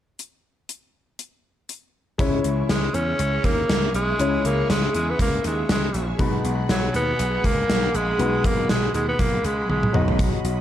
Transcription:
0.19 closed hi-hat
0.69 closed hi-hat
1.19 closed hi-hat
1.69 closed hi-hat
2.18 C#2 C#3 G#3 C#4 E4 G#4 C#5 E5 C#6, kick, closed hi-hat
2.44 C#2, closed hi-hat
2.69 C#2 G#3, snare, closed hi-hat
2.94 E2 C#4, closed hi-hat
3.19 C#2, closed hi-hat
3.44 D#2 A#3, kick, closed hi-hat
3.69 C#2, snare, closed hi-hat
3.94 B1 G#3, closed hi-hat
4.18 C#2 C#3 G#3 C#4 E4 C#5, closed hi-hat
4.44 C#2 A#3, closed hi-hat
4.69 C#2 G#3, snare, closed hi-hat
4.94 E2 G#3, closed hi-hat
5.10 B3
5.19 C#2 A#3, kick, closed hi-hat
5.44 D#2 G#3, closed hi-hat
5.69 C#2 G#3, snare, closed hi-hat
5.94 A#1, closed hi-hat
6.18 B1 B2 G#3 D#4 F#4 G#4 F#5 B5, kick, closed hi-hat
6.44 B1, closed hi-hat
6.69 B1 F#3, snare, closed hi-hat
6.94 D#2 B3, closed hi-hat
7.19 B1, closed hi-hat
7.44 C#2 A#3, kick, closed hi-hat
7.69 B1, snare, closed hi-hat
7.94 A#1 G#3, closed hi-hat
8.18 B1 B2 G#3 D#4 F#4 B4, closed hi-hat
8.44 B1 A#3, kick, closed hi-hat
8.69 B1 G#3, snare, closed hi-hat
8.94 D#2 G#3, closed hi-hat
9.09 B3
9.19 B1 A#3, kick, closed hi-hat
9.44 C#2 G#3, closed hi-hat
9.69 B1 G#3, high tom
9.83 mid tom
9.93 B1 B2 F#3 D#4 F#4 D#5, mid tom
10.08 floor tom
10.19 kick, closed hi-hat
10.44 B1, closed hi-hat

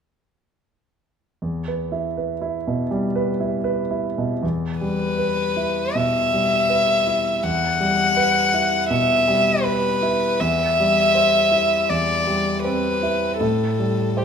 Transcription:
1.42 E2
1.68 B4
1.92 E4
2.17 B4
2.42 E4
2.67 B2
2.91 G3
3.15 B4
3.40 E4
3.64 B4
3.91 E4
4.18 B2
4.43 E2
4.80 G3 B4
5.18 B4
5.57 E4
5.95 B2 E5
6.33 G3
6.69 B4
7.07 E4
7.43 E2 F#5
7.80 G3
8.17 B4
8.54 E4
8.89 B2 E5
9.28 G3
9.63 B4
10.02 E4
10.40 E2 E5
10.80 G3
11.15 C5
11.52 E4
11.90 E2 D5
12.27 G3
12.63 C4 B4
13.03 E4
13.39 A2 A4
13.79 G3
14.17 G4 C5

